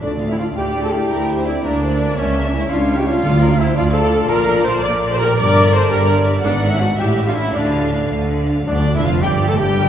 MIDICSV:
0, 0, Header, 1, 11, 480
1, 0, Start_track
1, 0, Key_signature, -1, "minor"
1, 0, Tempo, 356506
1, 40, Time_signature, 6, 3, 24, 8
1, 8680, Tempo, 372671
1, 11560, Tempo, 360360
1, 13165, End_track
2, 0, Start_track
2, 0, Title_t, "Flute"
2, 0, Program_c, 0, 73
2, 26, Note_on_c, 0, 74, 72
2, 367, Note_off_c, 0, 74, 0
2, 375, Note_on_c, 0, 76, 67
2, 437, Note_off_c, 0, 76, 0
2, 515, Note_on_c, 0, 77, 72
2, 596, Note_off_c, 0, 77, 0
2, 754, Note_on_c, 0, 79, 77
2, 1106, Note_off_c, 0, 79, 0
2, 1114, Note_on_c, 0, 81, 73
2, 1225, Note_on_c, 0, 79, 84
2, 1246, Note_off_c, 0, 81, 0
2, 1957, Note_on_c, 0, 76, 75
2, 1977, Note_off_c, 0, 79, 0
2, 2185, Note_off_c, 0, 76, 0
2, 2193, Note_on_c, 0, 74, 76
2, 2910, Note_on_c, 0, 73, 79
2, 2930, Note_off_c, 0, 74, 0
2, 3264, Note_off_c, 0, 73, 0
2, 3272, Note_on_c, 0, 74, 65
2, 3332, Note_off_c, 0, 74, 0
2, 3402, Note_on_c, 0, 76, 76
2, 3627, Note_on_c, 0, 77, 85
2, 3648, Note_off_c, 0, 76, 0
2, 3997, Note_on_c, 0, 79, 78
2, 4017, Note_off_c, 0, 77, 0
2, 4119, Note_on_c, 0, 77, 88
2, 4139, Note_off_c, 0, 79, 0
2, 4818, Note_on_c, 0, 76, 82
2, 4838, Note_off_c, 0, 77, 0
2, 5065, Note_off_c, 0, 76, 0
2, 5075, Note_on_c, 0, 77, 95
2, 5156, Note_off_c, 0, 77, 0
2, 5314, Note_on_c, 0, 81, 93
2, 5776, Note_on_c, 0, 82, 104
2, 5797, Note_off_c, 0, 81, 0
2, 6255, Note_off_c, 0, 82, 0
2, 6263, Note_on_c, 0, 84, 96
2, 6485, Note_off_c, 0, 84, 0
2, 6493, Note_on_c, 0, 86, 100
2, 6848, Note_off_c, 0, 86, 0
2, 6856, Note_on_c, 0, 84, 94
2, 6989, Note_on_c, 0, 82, 104
2, 7009, Note_off_c, 0, 84, 0
2, 7231, Note_off_c, 0, 82, 0
2, 7243, Note_on_c, 0, 86, 112
2, 7707, Note_on_c, 0, 84, 98
2, 7728, Note_off_c, 0, 86, 0
2, 7940, Note_on_c, 0, 82, 95
2, 7960, Note_off_c, 0, 84, 0
2, 8190, Note_off_c, 0, 82, 0
2, 8653, Note_on_c, 0, 74, 90
2, 9010, Note_on_c, 0, 76, 81
2, 9029, Note_off_c, 0, 74, 0
2, 9132, Note_on_c, 0, 78, 93
2, 9152, Note_off_c, 0, 76, 0
2, 9368, Note_off_c, 0, 78, 0
2, 9375, Note_on_c, 0, 79, 90
2, 9457, Note_off_c, 0, 79, 0
2, 9725, Note_on_c, 0, 77, 78
2, 9847, Note_on_c, 0, 76, 82
2, 9866, Note_off_c, 0, 77, 0
2, 10085, Note_off_c, 0, 76, 0
2, 10092, Note_on_c, 0, 74, 78
2, 10818, Note_off_c, 0, 74, 0
2, 11542, Note_on_c, 0, 74, 79
2, 11625, Note_off_c, 0, 74, 0
2, 11912, Note_on_c, 0, 76, 69
2, 11969, Note_off_c, 0, 76, 0
2, 12044, Note_on_c, 0, 77, 82
2, 12124, Note_off_c, 0, 77, 0
2, 12281, Note_on_c, 0, 79, 87
2, 12636, Note_off_c, 0, 79, 0
2, 12650, Note_on_c, 0, 81, 80
2, 12754, Note_on_c, 0, 79, 87
2, 12774, Note_off_c, 0, 81, 0
2, 13165, Note_off_c, 0, 79, 0
2, 13165, End_track
3, 0, Start_track
3, 0, Title_t, "Violin section"
3, 0, Program_c, 1, 48
3, 23, Note_on_c, 1, 74, 64
3, 259, Note_off_c, 1, 74, 0
3, 266, Note_on_c, 1, 77, 58
3, 514, Note_on_c, 1, 74, 56
3, 520, Note_off_c, 1, 77, 0
3, 748, Note_on_c, 1, 77, 61
3, 765, Note_off_c, 1, 74, 0
3, 986, Note_on_c, 1, 74, 62
3, 1003, Note_off_c, 1, 77, 0
3, 1222, Note_on_c, 1, 77, 56
3, 1226, Note_off_c, 1, 74, 0
3, 1480, Note_on_c, 1, 74, 62
3, 1484, Note_off_c, 1, 77, 0
3, 1716, Note_off_c, 1, 74, 0
3, 1716, Note_on_c, 1, 76, 58
3, 1953, Note_on_c, 1, 74, 59
3, 1971, Note_off_c, 1, 76, 0
3, 2209, Note_off_c, 1, 74, 0
3, 2213, Note_on_c, 1, 76, 60
3, 2452, Note_on_c, 1, 74, 62
3, 2459, Note_off_c, 1, 76, 0
3, 2681, Note_off_c, 1, 74, 0
3, 2685, Note_on_c, 1, 76, 59
3, 2916, Note_on_c, 1, 73, 65
3, 2934, Note_off_c, 1, 76, 0
3, 3150, Note_off_c, 1, 73, 0
3, 3153, Note_on_c, 1, 76, 60
3, 3405, Note_off_c, 1, 76, 0
3, 3414, Note_on_c, 1, 73, 60
3, 3650, Note_on_c, 1, 76, 62
3, 3653, Note_off_c, 1, 73, 0
3, 3889, Note_off_c, 1, 76, 0
3, 3889, Note_on_c, 1, 73, 63
3, 4110, Note_off_c, 1, 73, 0
3, 4120, Note_on_c, 1, 76, 60
3, 4351, Note_on_c, 1, 77, 71
3, 4360, Note_off_c, 1, 76, 0
3, 4576, Note_off_c, 1, 77, 0
3, 4605, Note_on_c, 1, 74, 65
3, 4839, Note_off_c, 1, 74, 0
3, 4841, Note_on_c, 1, 77, 65
3, 5058, Note_on_c, 1, 74, 66
3, 5077, Note_off_c, 1, 77, 0
3, 5287, Note_on_c, 1, 77, 70
3, 5305, Note_off_c, 1, 74, 0
3, 5521, Note_off_c, 1, 77, 0
3, 5536, Note_on_c, 1, 74, 66
3, 5768, Note_on_c, 1, 77, 74
3, 5782, Note_off_c, 1, 74, 0
3, 6000, Note_off_c, 1, 77, 0
3, 6035, Note_on_c, 1, 74, 70
3, 6256, Note_on_c, 1, 77, 66
3, 6272, Note_off_c, 1, 74, 0
3, 6502, Note_on_c, 1, 74, 72
3, 6503, Note_off_c, 1, 77, 0
3, 6746, Note_off_c, 1, 74, 0
3, 6755, Note_on_c, 1, 77, 74
3, 6976, Note_off_c, 1, 77, 0
3, 6982, Note_on_c, 1, 74, 74
3, 7203, Note_off_c, 1, 74, 0
3, 7219, Note_on_c, 1, 74, 80
3, 7442, Note_on_c, 1, 76, 74
3, 7450, Note_off_c, 1, 74, 0
3, 7694, Note_on_c, 1, 74, 73
3, 7700, Note_off_c, 1, 76, 0
3, 7946, Note_off_c, 1, 74, 0
3, 7955, Note_on_c, 1, 76, 79
3, 8179, Note_on_c, 1, 74, 72
3, 8197, Note_off_c, 1, 76, 0
3, 8412, Note_off_c, 1, 74, 0
3, 8420, Note_on_c, 1, 76, 74
3, 8656, Note_on_c, 1, 74, 74
3, 8672, Note_off_c, 1, 76, 0
3, 8885, Note_off_c, 1, 74, 0
3, 8906, Note_on_c, 1, 76, 70
3, 9144, Note_off_c, 1, 76, 0
3, 9145, Note_on_c, 1, 74, 66
3, 9369, Note_on_c, 1, 76, 69
3, 9382, Note_off_c, 1, 74, 0
3, 9597, Note_off_c, 1, 76, 0
3, 9605, Note_on_c, 1, 73, 64
3, 9853, Note_on_c, 1, 76, 63
3, 9854, Note_off_c, 1, 73, 0
3, 10098, Note_on_c, 1, 74, 67
3, 10102, Note_off_c, 1, 76, 0
3, 10331, Note_off_c, 1, 74, 0
3, 10339, Note_on_c, 1, 77, 60
3, 10590, Note_off_c, 1, 77, 0
3, 10596, Note_on_c, 1, 74, 59
3, 10832, Note_on_c, 1, 77, 59
3, 10839, Note_off_c, 1, 74, 0
3, 11078, Note_off_c, 1, 77, 0
3, 11091, Note_on_c, 1, 74, 56
3, 11312, Note_off_c, 1, 74, 0
3, 11326, Note_on_c, 1, 77, 65
3, 11562, Note_off_c, 1, 77, 0
3, 11582, Note_on_c, 1, 74, 100
3, 11909, Note_off_c, 1, 74, 0
3, 11964, Note_on_c, 1, 76, 88
3, 12056, Note_on_c, 1, 77, 96
3, 12064, Note_off_c, 1, 76, 0
3, 12150, Note_off_c, 1, 77, 0
3, 12292, Note_on_c, 1, 79, 92
3, 12398, Note_off_c, 1, 79, 0
3, 12648, Note_on_c, 1, 81, 87
3, 12695, Note_off_c, 1, 81, 0
3, 12766, Note_on_c, 1, 79, 108
3, 13165, Note_off_c, 1, 79, 0
3, 13165, End_track
4, 0, Start_track
4, 0, Title_t, "Violin section"
4, 0, Program_c, 2, 48
4, 764, Note_on_c, 2, 74, 71
4, 1447, Note_off_c, 2, 74, 0
4, 1510, Note_on_c, 2, 70, 72
4, 1743, Note_on_c, 2, 72, 65
4, 1749, Note_off_c, 2, 70, 0
4, 1979, Note_on_c, 2, 74, 69
4, 1984, Note_off_c, 2, 72, 0
4, 2221, Note_off_c, 2, 74, 0
4, 2221, Note_on_c, 2, 70, 72
4, 2460, Note_on_c, 2, 72, 68
4, 2462, Note_off_c, 2, 70, 0
4, 2557, Note_off_c, 2, 72, 0
4, 2696, Note_on_c, 2, 74, 73
4, 2931, Note_on_c, 2, 76, 85
4, 2934, Note_off_c, 2, 74, 0
4, 3641, Note_on_c, 2, 73, 79
4, 3650, Note_off_c, 2, 76, 0
4, 4343, Note_off_c, 2, 73, 0
4, 4369, Note_on_c, 2, 69, 83
4, 4462, Note_off_c, 2, 69, 0
4, 4599, Note_on_c, 2, 70, 74
4, 4832, Note_off_c, 2, 70, 0
4, 4844, Note_on_c, 2, 72, 75
4, 5074, Note_off_c, 2, 72, 0
4, 5079, Note_on_c, 2, 74, 85
4, 5769, Note_off_c, 2, 74, 0
4, 5785, Note_on_c, 2, 74, 100
4, 7200, Note_off_c, 2, 74, 0
4, 7234, Note_on_c, 2, 70, 94
4, 7958, Note_off_c, 2, 70, 0
4, 7959, Note_on_c, 2, 74, 89
4, 8676, Note_on_c, 2, 78, 105
4, 8682, Note_off_c, 2, 74, 0
4, 9366, Note_off_c, 2, 78, 0
4, 9379, Note_on_c, 2, 76, 79
4, 10105, Note_off_c, 2, 76, 0
4, 10107, Note_on_c, 2, 77, 79
4, 11203, Note_off_c, 2, 77, 0
4, 11559, Note_on_c, 2, 62, 81
4, 11896, Note_off_c, 2, 62, 0
4, 11934, Note_on_c, 2, 64, 79
4, 12046, Note_on_c, 2, 65, 83
4, 12049, Note_off_c, 2, 64, 0
4, 12284, Note_on_c, 2, 67, 79
4, 12286, Note_off_c, 2, 65, 0
4, 12638, Note_off_c, 2, 67, 0
4, 12645, Note_on_c, 2, 69, 80
4, 12764, Note_off_c, 2, 69, 0
4, 12767, Note_on_c, 2, 67, 93
4, 13165, Note_off_c, 2, 67, 0
4, 13165, End_track
5, 0, Start_track
5, 0, Title_t, "Trumpet"
5, 0, Program_c, 3, 56
5, 11548, Note_on_c, 3, 62, 80
5, 11891, Note_off_c, 3, 62, 0
5, 11910, Note_on_c, 3, 64, 77
5, 12018, Note_off_c, 3, 64, 0
5, 12026, Note_on_c, 3, 65, 80
5, 12271, Note_on_c, 3, 67, 90
5, 12291, Note_off_c, 3, 65, 0
5, 12632, Note_on_c, 3, 69, 80
5, 12652, Note_off_c, 3, 67, 0
5, 12751, Note_off_c, 3, 69, 0
5, 12759, Note_on_c, 3, 67, 86
5, 13165, Note_off_c, 3, 67, 0
5, 13165, End_track
6, 0, Start_track
6, 0, Title_t, "Viola section"
6, 0, Program_c, 4, 48
6, 25, Note_on_c, 4, 62, 87
6, 132, Note_off_c, 4, 62, 0
6, 423, Note_on_c, 4, 64, 81
6, 469, Note_off_c, 4, 64, 0
6, 533, Note_on_c, 4, 65, 85
6, 630, Note_off_c, 4, 65, 0
6, 766, Note_on_c, 4, 67, 94
6, 1126, Note_off_c, 4, 67, 0
6, 1144, Note_on_c, 4, 69, 82
6, 1262, Note_off_c, 4, 69, 0
6, 1262, Note_on_c, 4, 67, 96
6, 1972, Note_on_c, 4, 64, 83
6, 1987, Note_off_c, 4, 67, 0
6, 2071, Note_off_c, 4, 64, 0
6, 2213, Note_on_c, 4, 62, 92
6, 2922, Note_off_c, 4, 62, 0
6, 2923, Note_on_c, 4, 61, 94
6, 3291, Note_off_c, 4, 61, 0
6, 3316, Note_on_c, 4, 62, 85
6, 3421, Note_on_c, 4, 64, 92
6, 3427, Note_off_c, 4, 62, 0
6, 3652, Note_off_c, 4, 64, 0
6, 3658, Note_on_c, 4, 65, 98
6, 4012, Note_off_c, 4, 65, 0
6, 4033, Note_on_c, 4, 67, 88
6, 4137, Note_on_c, 4, 65, 109
6, 4140, Note_off_c, 4, 67, 0
6, 4826, Note_off_c, 4, 65, 0
6, 4840, Note_on_c, 4, 64, 96
6, 5069, Note_on_c, 4, 65, 114
6, 5076, Note_off_c, 4, 64, 0
6, 5166, Note_off_c, 4, 65, 0
6, 5299, Note_on_c, 4, 69, 106
6, 5773, Note_off_c, 4, 69, 0
6, 5780, Note_on_c, 4, 70, 112
6, 6262, Note_on_c, 4, 72, 102
6, 6263, Note_off_c, 4, 70, 0
6, 6491, Note_on_c, 4, 74, 117
6, 6506, Note_off_c, 4, 72, 0
6, 6599, Note_off_c, 4, 74, 0
6, 6885, Note_on_c, 4, 72, 113
6, 6990, Note_on_c, 4, 70, 114
6, 6995, Note_off_c, 4, 72, 0
6, 7227, Note_off_c, 4, 70, 0
6, 7241, Note_on_c, 4, 74, 117
6, 7710, Note_off_c, 4, 74, 0
6, 7712, Note_on_c, 4, 72, 114
6, 7955, Note_off_c, 4, 72, 0
6, 7964, Note_on_c, 4, 70, 110
6, 8197, Note_off_c, 4, 70, 0
6, 8674, Note_on_c, 4, 62, 105
6, 8778, Note_off_c, 4, 62, 0
6, 9048, Note_on_c, 4, 64, 90
6, 9150, Note_on_c, 4, 66, 103
6, 9154, Note_off_c, 4, 64, 0
6, 9243, Note_off_c, 4, 66, 0
6, 9381, Note_on_c, 4, 67, 107
6, 9733, Note_off_c, 4, 67, 0
6, 9755, Note_on_c, 4, 65, 89
6, 9846, Note_on_c, 4, 64, 103
6, 9867, Note_off_c, 4, 65, 0
6, 10094, Note_off_c, 4, 64, 0
6, 10095, Note_on_c, 4, 62, 88
6, 10834, Note_off_c, 4, 62, 0
6, 12285, Note_on_c, 4, 74, 90
6, 12952, Note_off_c, 4, 74, 0
6, 12999, Note_on_c, 4, 70, 88
6, 13165, Note_off_c, 4, 70, 0
6, 13165, End_track
7, 0, Start_track
7, 0, Title_t, "French horn section"
7, 0, Program_c, 5, 60
7, 21, Note_on_c, 5, 57, 74
7, 191, Note_off_c, 5, 57, 0
7, 401, Note_on_c, 5, 60, 69
7, 457, Note_off_c, 5, 60, 0
7, 514, Note_on_c, 5, 62, 69
7, 627, Note_off_c, 5, 62, 0
7, 748, Note_on_c, 5, 64, 75
7, 1117, Note_off_c, 5, 64, 0
7, 1121, Note_on_c, 5, 65, 68
7, 1251, Note_off_c, 5, 65, 0
7, 1258, Note_on_c, 5, 64, 72
7, 1970, Note_off_c, 5, 64, 0
7, 1988, Note_on_c, 5, 60, 72
7, 2221, Note_off_c, 5, 60, 0
7, 2229, Note_on_c, 5, 58, 75
7, 2923, Note_off_c, 5, 58, 0
7, 2939, Note_on_c, 5, 58, 77
7, 3286, Note_off_c, 5, 58, 0
7, 3302, Note_on_c, 5, 58, 70
7, 3412, Note_on_c, 5, 61, 76
7, 3418, Note_off_c, 5, 58, 0
7, 3520, Note_off_c, 5, 61, 0
7, 3634, Note_on_c, 5, 62, 82
7, 3977, Note_on_c, 5, 64, 79
7, 3993, Note_off_c, 5, 62, 0
7, 4092, Note_on_c, 5, 62, 84
7, 4112, Note_off_c, 5, 64, 0
7, 4815, Note_on_c, 5, 60, 80
7, 4818, Note_off_c, 5, 62, 0
7, 5045, Note_on_c, 5, 62, 93
7, 5059, Note_off_c, 5, 60, 0
7, 5159, Note_off_c, 5, 62, 0
7, 5265, Note_on_c, 5, 65, 96
7, 5742, Note_off_c, 5, 65, 0
7, 5758, Note_on_c, 5, 65, 100
7, 6243, Note_off_c, 5, 65, 0
7, 6243, Note_on_c, 5, 69, 95
7, 6483, Note_on_c, 5, 70, 102
7, 6491, Note_off_c, 5, 69, 0
7, 6849, Note_on_c, 5, 69, 93
7, 6856, Note_off_c, 5, 70, 0
7, 6963, Note_on_c, 5, 67, 92
7, 6980, Note_off_c, 5, 69, 0
7, 7213, Note_off_c, 5, 67, 0
7, 7228, Note_on_c, 5, 70, 108
7, 7704, Note_off_c, 5, 70, 0
7, 7717, Note_on_c, 5, 69, 102
7, 7951, Note_on_c, 5, 67, 94
7, 7958, Note_off_c, 5, 69, 0
7, 8196, Note_off_c, 5, 67, 0
7, 8673, Note_on_c, 5, 59, 93
7, 9002, Note_off_c, 5, 59, 0
7, 9038, Note_on_c, 5, 61, 82
7, 9089, Note_off_c, 5, 61, 0
7, 9152, Note_on_c, 5, 62, 87
7, 9257, Note_off_c, 5, 62, 0
7, 9398, Note_on_c, 5, 64, 89
7, 9742, Note_off_c, 5, 64, 0
7, 9772, Note_on_c, 5, 62, 76
7, 9877, Note_off_c, 5, 62, 0
7, 9904, Note_on_c, 5, 61, 81
7, 10103, Note_on_c, 5, 57, 76
7, 10128, Note_off_c, 5, 61, 0
7, 10823, Note_off_c, 5, 57, 0
7, 11548, Note_on_c, 5, 62, 80
7, 11713, Note_off_c, 5, 62, 0
7, 11913, Note_on_c, 5, 64, 79
7, 12036, Note_off_c, 5, 64, 0
7, 12038, Note_on_c, 5, 65, 81
7, 12277, Note_on_c, 5, 67, 85
7, 12282, Note_off_c, 5, 65, 0
7, 12441, Note_off_c, 5, 67, 0
7, 12618, Note_on_c, 5, 69, 79
7, 12744, Note_on_c, 5, 67, 86
7, 12748, Note_off_c, 5, 69, 0
7, 13165, Note_off_c, 5, 67, 0
7, 13165, End_track
8, 0, Start_track
8, 0, Title_t, "Trombone section"
8, 0, Program_c, 6, 61
8, 11564, Note_on_c, 6, 50, 93
8, 11899, Note_off_c, 6, 50, 0
8, 11920, Note_on_c, 6, 52, 86
8, 12042, Note_off_c, 6, 52, 0
8, 12046, Note_on_c, 6, 53, 86
8, 12275, Note_on_c, 6, 55, 83
8, 12286, Note_off_c, 6, 53, 0
8, 12439, Note_off_c, 6, 55, 0
8, 12659, Note_on_c, 6, 57, 83
8, 12746, Note_on_c, 6, 55, 102
8, 12769, Note_off_c, 6, 57, 0
8, 13165, Note_off_c, 6, 55, 0
8, 13165, End_track
9, 0, Start_track
9, 0, Title_t, "Timpani"
9, 0, Program_c, 7, 47
9, 4349, Note_on_c, 7, 50, 89
9, 5017, Note_off_c, 7, 50, 0
9, 11551, Note_on_c, 7, 50, 100
9, 12229, Note_off_c, 7, 50, 0
9, 12995, Note_on_c, 7, 50, 104
9, 13165, Note_off_c, 7, 50, 0
9, 13165, End_track
10, 0, Start_track
10, 0, Title_t, "Cello section"
10, 0, Program_c, 8, 48
10, 28, Note_on_c, 8, 38, 73
10, 680, Note_off_c, 8, 38, 0
10, 762, Note_on_c, 8, 38, 71
10, 1410, Note_off_c, 8, 38, 0
10, 1489, Note_on_c, 8, 38, 73
10, 2133, Note_off_c, 8, 38, 0
10, 2220, Note_on_c, 8, 38, 76
10, 2856, Note_off_c, 8, 38, 0
10, 2932, Note_on_c, 8, 37, 76
10, 3567, Note_off_c, 8, 37, 0
10, 3635, Note_on_c, 8, 37, 81
10, 4271, Note_off_c, 8, 37, 0
10, 4351, Note_on_c, 8, 38, 81
10, 4983, Note_off_c, 8, 38, 0
10, 5064, Note_on_c, 8, 38, 87
10, 5700, Note_off_c, 8, 38, 0
10, 5785, Note_on_c, 8, 46, 91
10, 6422, Note_off_c, 8, 46, 0
10, 6507, Note_on_c, 8, 46, 88
10, 7145, Note_off_c, 8, 46, 0
10, 7224, Note_on_c, 8, 43, 91
10, 7868, Note_off_c, 8, 43, 0
10, 7947, Note_on_c, 8, 43, 91
10, 8591, Note_off_c, 8, 43, 0
10, 8672, Note_on_c, 8, 44, 90
10, 9295, Note_off_c, 8, 44, 0
10, 9367, Note_on_c, 8, 45, 83
10, 10012, Note_off_c, 8, 45, 0
10, 10091, Note_on_c, 8, 50, 80
10, 10746, Note_off_c, 8, 50, 0
10, 10824, Note_on_c, 8, 50, 79
10, 11470, Note_off_c, 8, 50, 0
10, 11545, Note_on_c, 8, 38, 84
10, 11889, Note_off_c, 8, 38, 0
10, 11924, Note_on_c, 8, 40, 77
10, 12041, Note_on_c, 8, 41, 89
10, 12042, Note_off_c, 8, 40, 0
10, 12283, Note_off_c, 8, 41, 0
10, 12283, Note_on_c, 8, 43, 86
10, 12642, Note_on_c, 8, 45, 83
10, 12644, Note_off_c, 8, 43, 0
10, 12759, Note_on_c, 8, 43, 85
10, 12760, Note_off_c, 8, 45, 0
10, 13165, Note_off_c, 8, 43, 0
10, 13165, End_track
11, 0, Start_track
11, 0, Title_t, "Double bass section"
11, 0, Program_c, 10, 48
11, 30, Note_on_c, 10, 38, 73
11, 681, Note_off_c, 10, 38, 0
11, 773, Note_on_c, 10, 38, 72
11, 1416, Note_off_c, 10, 38, 0
11, 1489, Note_on_c, 10, 38, 75
11, 2132, Note_off_c, 10, 38, 0
11, 2204, Note_on_c, 10, 38, 75
11, 2848, Note_off_c, 10, 38, 0
11, 2917, Note_on_c, 10, 37, 75
11, 3559, Note_off_c, 10, 37, 0
11, 3644, Note_on_c, 10, 37, 80
11, 4275, Note_off_c, 10, 37, 0
11, 4362, Note_on_c, 10, 38, 85
11, 4989, Note_off_c, 10, 38, 0
11, 5078, Note_on_c, 10, 38, 84
11, 5707, Note_off_c, 10, 38, 0
11, 5788, Note_on_c, 10, 34, 88
11, 6423, Note_off_c, 10, 34, 0
11, 6503, Note_on_c, 10, 34, 95
11, 7143, Note_off_c, 10, 34, 0
11, 7240, Note_on_c, 10, 31, 95
11, 7876, Note_off_c, 10, 31, 0
11, 7952, Note_on_c, 10, 31, 91
11, 8593, Note_off_c, 10, 31, 0
11, 8687, Note_on_c, 10, 32, 96
11, 9303, Note_off_c, 10, 32, 0
11, 9384, Note_on_c, 10, 33, 85
11, 10020, Note_off_c, 10, 33, 0
11, 10088, Note_on_c, 10, 38, 75
11, 10744, Note_off_c, 10, 38, 0
11, 10825, Note_on_c, 10, 38, 75
11, 11471, Note_off_c, 10, 38, 0
11, 11552, Note_on_c, 10, 38, 90
11, 11892, Note_off_c, 10, 38, 0
11, 12035, Note_on_c, 10, 29, 85
11, 12280, Note_off_c, 10, 29, 0
11, 12281, Note_on_c, 10, 31, 93
11, 12643, Note_off_c, 10, 31, 0
11, 12755, Note_on_c, 10, 31, 93
11, 13165, Note_off_c, 10, 31, 0
11, 13165, End_track
0, 0, End_of_file